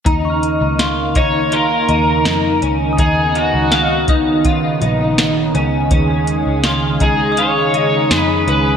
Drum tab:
HH |xxxxxxxx|xxxxxxxx|xxxxxxxx|
SD |--o---o-|--o---o-|--o---o-|
BD |o--o----|o--oo---|o--o----|